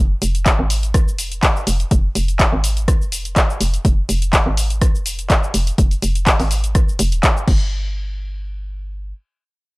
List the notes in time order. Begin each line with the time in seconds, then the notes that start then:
Already playing: F1
0.22 F1, open hi-hat, shaker
0.35 closed hi-hat, shaker
0.46 kick, clap, closed hi-hat, shaker
0.59 G#1
0.70 open hi-hat, shaker
0.83 closed hi-hat, shaker
0.94 C2, kick, cross-stick, closed hi-hat, shaker
1.07 F1, shaker
1.19 open hi-hat, shaker
1.32 closed hi-hat, shaker
1.43 D#1, kick, clap, closed hi-hat, shaker
1.56 shaker
1.67 F1, open hi-hat, shaker
1.80 closed hi-hat, shaker
1.91 F1, kick, closed hi-hat, shaker
2.15 F1, open hi-hat, shaker
2.28 closed hi-hat, shaker
2.40 kick, clap, closed hi-hat, shaker
2.53 G#1
2.64 open hi-hat, shaker
2.77 closed hi-hat, shaker
2.88 C2, kick, cross-stick, closed hi-hat, shaker
3.01 F1, shaker
3.12 open hi-hat, shaker
3.25 closed hi-hat, shaker
3.36 D#1, kick, clap, closed hi-hat, shaker
3.50 shaker
3.61 F1, open hi-hat, shaker
3.74 closed hi-hat, shaker
3.85 F1, kick, closed hi-hat, shaker
4.09 F1, open hi-hat, shaker
4.22 closed hi-hat, shaker
4.33 kick, clap, closed hi-hat, shaker
4.46 G#1
4.57 open hi-hat, shaker
4.70 closed hi-hat, shaker
4.81 C2, kick, cross-stick, closed hi-hat, shaker
4.94 F1, shaker
5.06 open hi-hat, shaker
5.19 closed hi-hat, shaker
5.30 D#1, kick, clap, closed hi-hat, shaker
5.44 shaker
5.54 F1, open hi-hat, shaker
5.67 closed hi-hat, shaker
5.78 F1, kick, closed hi-hat, shaker
5.91 closed hi-hat, shaker
6.02 F1, open hi-hat, shaker
6.15 closed hi-hat, shaker
6.27 kick, clap, closed hi-hat, shaker
6.40 G#1, open hi-hat, shaker
6.51 open hi-hat, shaker
6.64 closed hi-hat, shaker
6.75 C2, kick, cross-stick, closed hi-hat, shaker
6.88 F1, shaker
6.99 F1, open hi-hat, shaker
7.12 D#1, closed hi-hat, shaker
7.23 kick, clap, closed hi-hat, shaker
7.37 shaker
7.48 G1, kick, crash